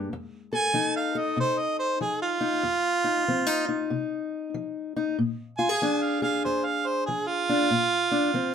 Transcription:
Already playing: steel-string acoustic guitar G2
0.13 steel-string acoustic guitar F2
0.53 steel-string acoustic guitar A4, harmonica G#5
0.74 steel-string acoustic guitar F3 D#4
0.96 harmonica F5
1.15 steel-string acoustic guitar A4, harmonica D#5
1.37 steel-string acoustic guitar C3, harmonica C5
1.60 harmonica D#5
1.79 harmonica C5
2.01 steel-string acoustic guitar F3, harmonica G#4
2.22 harmonica F4
2.41 steel-string acoustic guitar D#4
2.63 steel-string acoustic guitar F2
3.04 steel-string acoustic guitar D#4
3.28 steel-string acoustic guitar F3 C4
3.46 steel-string acoustic guitar D#4
3.69 steel-string acoustic guitar D#4
3.90 steel-string acoustic guitar C3
4.54 steel-string acoustic guitar F3
4.96 steel-string acoustic guitar D#4
5.18 steel-string acoustic guitar A#2
5.58 steel-string acoustic guitar F4, harmonica G#5
5.69 steel-string acoustic guitar G#4
5.82 steel-string acoustic guitar F3 D4
6.02 harmonica F5
6.22 steel-string acoustic guitar G#4, harmonica F5
6.45 steel-string acoustic guitar F2, harmonica C5
6.65 harmonica F5
6.87 harmonica C5
7.06 steel-string acoustic guitar F3, harmonica G#4
7.28 harmonica F4
7.49 steel-string acoustic guitar D4
7.70 steel-string acoustic guitar A#2
8.11 steel-string acoustic guitar D4
8.34 steel-string acoustic guitar F3 C4

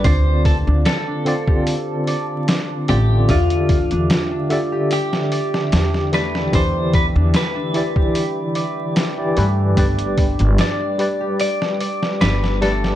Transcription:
Already playing: harp A3 G4 D5, ambient pad D6
0.04 upright bass D2, tine electric piano D3 C4 F4 D5, harp D4, ambient pad C5 F5 A5, clean electric guitar C5, kick, open hi-hat
0.45 clean electric guitar A4, kick, open hi-hat
0.67 upright bass D2, harp D4
0.85 clean electric guitar A4, snare, open hi-hat
1.07 harp D4
1.25 tine electric piano D3 C4 F4 D5, open hi-hat
1.48 harp G4, kick
1.67 open hi-hat
2.07 harp D5, open hi-hat
2.48 harp D4, snare, open hi-hat
2.88 upright bass A1, tine electric piano D3 C4 F4 D5, harp A3, clean electric guitar G4, open hi-hat
3.28 upright bass E2, tine electric piano D3 G4 D5 E5, harp D4, clean electric guitar F4, ambient pad G4 E5 G5, kick, open hi-hat
3.50 closed hi-hat
3.69 kick, open hi-hat
3.91 upright bass E2, harp D4, closed hi-hat
4.10 snare, open hi-hat
4.31 harp D4
4.49 tine electric piano D3 G4 D5 E5, open hi-hat
4.72 harp G4
4.91 clean electric guitar G4, open hi-hat
5.13 snare
5.32 harp D5, open hi-hat
5.54 snare
5.72 upright bass E2, harp D4, snare, open hi-hat
5.94 snare
6.12 tine electric piano E3 E4 G4 D5, harp A3, clean electric guitar B4, snare, open hi-hat
6.35 snare
6.52 upright bass E2, tine electric piano E3 E4 G4 D5, harp D4, clean electric guitar C5, kick, open hi-hat
6.94 clean electric guitar B4, kick, open hi-hat
7.15 upright bass E2, harp D4
7.34 clean electric guitar B4, snare, open hi-hat
7.55 harp D4
7.74 tine electric piano E3 E4 G4 D5, open hi-hat
7.96 harp G4, kick
8.15 open hi-hat
8.55 harp D5, open hi-hat
8.96 harp D4, snare, open hi-hat
9.17 tine electric piano E3 E4 G4 D5
9.36 upright bass G2, tine electric piano E3 E4 G4 B4, harp A3, open hi-hat
9.76 upright bass G1, tine electric piano G3 G4 B4 D5, harp D4, ambient pad D5, kick, open hi-hat
9.99 closed hi-hat
10.18 kick, open hi-hat
10.39 upright bass G1, harp D4, closed hi-hat
10.58 clean electric guitar D5, snare, open hi-hat
10.80 harp D4
10.98 tine electric piano G3 G4 B4 D5, open hi-hat
11.21 harp G4
11.40 clean electric guitar D5, open hi-hat
11.62 snare
11.80 harp D5, open hi-hat
12.03 snare
12.21 upright bass G1, harp D4, clean electric guitar B4, snare, open hi-hat
12.44 snare
12.61 tine electric piano G3 G4 B4 D5, harp A3, clean electric guitar A4, snare, open hi-hat
12.84 snare

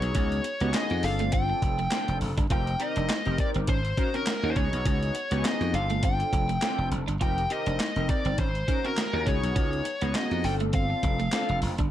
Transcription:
Already playing: analog polysynth B3 D#4 F#4 G#4, lead electric guitar C#5
0.02 slap bass B1, closed hi-hat
0.15 slap bass C#2, clean electric guitar C#4, kick, closed hi-hat
0.32 closed hi-hat
0.44 muted clean electric guitar stroke, closed hi-hat
0.60 slap bass C#2, analog polysynth B3 D#4 F#4 G4, clean electric guitar B3, closed hi-hat
0.68 analog polysynth G#4
0.74 clean electric guitar C#4, lead electric guitar D#5, snare, clap, closed hi-hat
0.90 slap bass F2, muted clean electric guitar stroke, closed hi-hat
1.03 slap bass G1, analog polysynth C4 D4 F4 A4, lead electric guitar F5, open hi-hat
1.19 clean electric guitar A3, closed hi-hat
1.32 clean electric guitar C4, lead electric guitar G5, kick, closed hi-hat
1.50 muted clean electric guitar stroke
1.62 slap bass F1, kick, closed hi-hat
1.79 clean electric guitar A3, closed hi-hat
1.91 analog polysynth C4 D4 F4 A4, clean electric guitar C4, snare, clap, closed hi-hat
2.08 slap bass F1, muted clean electric guitar stroke, closed hi-hat
2.21 slap bass F1, open hi-hat
2.38 slap bass G1, clean electric guitar D4, kick, closed hi-hat
2.50 slap bass F1, analog polysynth C4 D#4 G4 A#4, clean electric guitar F4, lead electric guitar G5, kick, closed hi-hat
2.67 closed hi-hat
2.79 analog polysynth C4 D#4 G4 A#4, lead electric guitar D#5, muted clean electric guitar stroke, closed hi-hat
2.96 slap bass F1, clean electric guitar D4, closed hi-hat
3.09 clean electric guitar D#4, snare, clap, closed hi-hat
3.25 slap bass F1, analog polysynth C4 D#4 G4 A#4, muted clean electric guitar stroke, closed hi-hat
3.38 lead electric guitar D5, kick, closed hi-hat
3.54 slap bass G1, clean electric guitar C4, closed hi-hat
3.67 slap bass G#1, clean electric guitar C#4, lead electric guitar C5, kick, closed hi-hat
3.85 closed hi-hat
3.97 analog polysynth C#4 D#4 F#4 A#4, muted clean electric guitar stroke, kick, closed hi-hat
4.14 clean electric guitar C4, analog polysynth C#4 D#4 F#4 A#4, lead electric guitar A#4, closed hi-hat
4.27 muted clean electric guitar stroke, snare, clap, closed hi-hat
4.43 slap bass D#2, analog polysynth C#4 D#4 F#4 A#4, clean electric guitar D#4
4.50 lead electric guitar C5
4.56 slap bass C#2, analog polysynth B3 D#4 F#4 G#4, clean electric guitar C#4, lead electric guitar C#5, kick, closed hi-hat
4.73 slap bass B1, closed hi-hat
4.86 slap bass C#2, clean electric guitar C#4, kick, closed hi-hat
5.03 closed hi-hat
5.15 muted clean electric guitar stroke, closed hi-hat
5.31 slap bass C#2, analog polysynth B3 D#4 F#4 G4, clean electric guitar B3, closed hi-hat
5.38 analog polysynth G#4
5.45 clean electric guitar C#4, lead electric guitar D#5, snare, clap, closed hi-hat
5.61 slap bass F2, muted clean electric guitar stroke, closed hi-hat
5.73 slap bass G1, analog polysynth C4 D4 F4 A4, lead electric guitar F5, closed hi-hat
5.90 clean electric guitar A3, closed hi-hat
6.03 clean electric guitar C4, lead electric guitar G5, kick, closed hi-hat
6.20 muted clean electric guitar stroke, closed hi-hat
6.33 slap bass F1, kick, closed hi-hat
6.49 clean electric guitar A3, closed hi-hat
6.62 analog polysynth C4 D4 F4 A4, clean electric guitar C4, snare, clap, closed hi-hat
6.78 slap bass F1, muted clean electric guitar stroke
6.91 slap bass F1, closed hi-hat
7.08 slap bass G1, clean electric guitar D4, closed hi-hat
7.21 slap bass F1, analog polysynth C4 D#4 G4 A#4, clean electric guitar F4, lead electric guitar G5, kick, closed hi-hat
7.38 closed hi-hat
7.50 analog polysynth C4 D#4 G4 A#4, lead electric guitar D#5, muted clean electric guitar stroke, closed hi-hat
7.66 slap bass F1, clean electric guitar D4, closed hi-hat
7.80 clean electric guitar D#4, snare, clap, closed hi-hat
7.96 slap bass F1, analog polysynth C4 D#4 G4 A#4, muted clean electric guitar stroke, closed hi-hat
8.09 lead electric guitar D5, kick, closed hi-hat
8.25 slap bass G1, clean electric guitar C4, closed hi-hat
8.38 slap bass G#1, clean electric guitar C#4, lead electric guitar C5, kick, closed hi-hat
8.55 closed hi-hat
8.68 analog polysynth C#4 D#4 F#4 A#4, muted clean electric guitar stroke, kick, closed hi-hat
8.84 clean electric guitar C4, analog polysynth C#4 D#4 F#4 A#4, lead electric guitar A#4, closed hi-hat
8.98 muted clean electric guitar stroke, snare, clap, closed hi-hat
9.13 slap bass D#2, analog polysynth C#4 D#4 F#4 A#4, clean electric guitar D#4
9.26 slap bass C#2, analog polysynth B3 D#4 F#4 G#4, clean electric guitar C#4, lead electric guitar C#5, kick, closed hi-hat
9.43 slap bass B1, closed hi-hat
9.56 slap bass C#2, clean electric guitar C#4, kick, closed hi-hat
9.73 closed hi-hat
9.85 muted clean electric guitar stroke, closed hi-hat
10.01 slap bass C#2, clean electric guitar B3, analog polysynth B3 D#4 F#4 G#4, closed hi-hat
10.15 clean electric guitar C#4, lead electric guitar D#5, snare, clap, closed hi-hat
10.31 slap bass F2, muted clean electric guitar stroke, closed hi-hat
10.44 slap bass G1, analog polysynth C4 D4 F4 A4, lead electric guitar G5, open hi-hat
10.60 clean electric guitar A3, closed hi-hat
10.73 clean electric guitar C4, lead electric guitar F5, kick, closed hi-hat
10.90 muted clean electric guitar stroke
11.03 slap bass F1, kick, closed hi-hat
11.20 clean electric guitar A3, closed hi-hat
11.32 analog polysynth C4 D4 F4 A4, clean electric guitar C4, snare, clap, closed hi-hat
11.49 slap bass F1, muted clean electric guitar stroke, closed hi-hat
11.62 slap bass F1, open hi-hat
11.78 slap bass G1, clean electric guitar D4, kick, closed hi-hat

